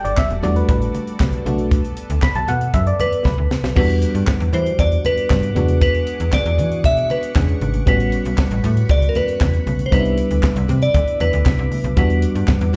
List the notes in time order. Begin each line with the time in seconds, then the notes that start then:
Already playing: G3 F#4 A4 D5
0.05 G1 D5, closed hi-hat
0.17 E5, kick, snare, clap, high conga
0.30 E1, closed hi-hat
0.42 E2 G3 A3 D4 F#4 D5, closed hi-hat, muted conga, low conga
0.56 B4, closed hi-hat
0.69 A1 B4, kick, closed hi-hat, muted conga
0.82 closed hi-hat
0.95 closed hi-hat, muted conga
1.07 closed hi-hat
1.20 B1, kick, snare, clap, high conga
1.33 closed hi-hat
1.45 B1 A3 B3 D4 F#4, closed hi-hat, high conga
1.58 closed hi-hat
1.71 kick, closed hi-hat, muted conga
1.85 closed hi-hat
1.97 closed hi-hat
2.10 D2, closed hi-hat
2.22 B5, kick, snare, clap, high conga
2.35 B1 A5, closed hi-hat
2.48 B2 F#5, closed hi-hat, low conga
2.61 closed hi-hat
2.74 F#2 E5, kick, closed hi-hat, muted conga
2.87 D5, closed hi-hat
3.00 B4 D5, closed hi-hat, muted conga, low conga
3.12 closed hi-hat
3.25 B1 B4, kick, snare, high conga
3.38 D2
3.51 snare, high conga
3.63 B1, snare
3.75 E2 G3 B3 D4 F#4 B4 F#5 D6, kick, crash, muted conga
3.90 closed hi-hat
4.02 closed hi-hat
4.15 G2, closed hi-hat
4.27 kick, snare, clap, high conga
4.40 E2, closed hi-hat
4.53 E3 C5, closed hi-hat, low conga
4.66 closed hi-hat
4.79 E2 D5, kick, closed hi-hat, muted conga
4.92 closed hi-hat
5.05 B4, closed hi-hat, muted conga, low conga
5.18 closed hi-hat
5.30 G2, kick, snare, clap, high conga
5.43 closed hi-hat
5.55 E2 G#3 B3 D4 F#4 G#4 C#6, closed hi-hat, high conga
5.68 closed hi-hat, high conga
5.81 B4, kick, closed hi-hat, muted conga
5.95 closed hi-hat
6.07 closed hi-hat
6.20 E2, closed hi-hat
6.32 D5, kick, snare, clap, high conga
6.46 E2, closed hi-hat
6.58 E3, closed hi-hat, low conga
6.72 closed hi-hat
6.84 B2 E5, kick, closed hi-hat, muted conga
6.97 closed hi-hat
7.10 B4, closed hi-hat, muted conga
7.23 closed hi-hat
7.35 E2 G#3 C#4 D4 G#4, kick, snare, clap, high conga
7.48 closed hi-hat
7.61 G#1, closed hi-hat, high conga
7.74 closed hi-hat, high conga
7.86 A1 G3 B3 C#4 F#4 B4 B5, kick, closed hi-hat, muted conga
8.00 closed hi-hat
8.12 closed hi-hat
8.25 B1, closed hi-hat
8.38 kick, snare, clap, high conga
8.51 A1, closed hi-hat
8.64 A2, closed hi-hat, muted conga, low conga
8.77 closed hi-hat
8.89 C#2 D5, kick, closed hi-hat, muted conga
9.02 closed hi-hat
9.09 A#4
9.15 B4, closed hi-hat, muted conga, low conga
9.28 closed hi-hat
9.41 E2, kick, snare, clap, high conga
9.53 closed hi-hat
9.67 B1, closed hi-hat, high conga
9.79 closed hi-hat, high conga
9.86 C5
9.91 C2 G3 B3 D4 D#4 B4 E5 D6, kick, closed hi-hat, muted conga
9.99 E4
10.05 closed hi-hat
10.18 closed hi-hat
10.30 D2, closed hi-hat
10.43 kick, snare, clap, high conga
10.56 C2, closed hi-hat
10.68 C3, closed hi-hat, muted conga, low conga
10.82 D5, closed hi-hat
10.94 D2, kick, closed hi-hat, muted conga
11.08 closed hi-hat
11.20 E2 B4, closed hi-hat, muted conga
11.33 D2, closed hi-hat
11.46 B1, kick, snare, clap, high conga
11.58 C2, closed hi-hat
11.72 open hi-hat, high conga
11.84 B1, closed hi-hat, high conga
11.96 E2 G3 B3 D4 F#4 B4 F#5, kick, closed hi-hat, muted conga
12.10 closed hi-hat
12.22 closed hi-hat
12.35 G2, closed hi-hat
12.48 kick, snare, clap, high conga
12.61 E2, closed hi-hat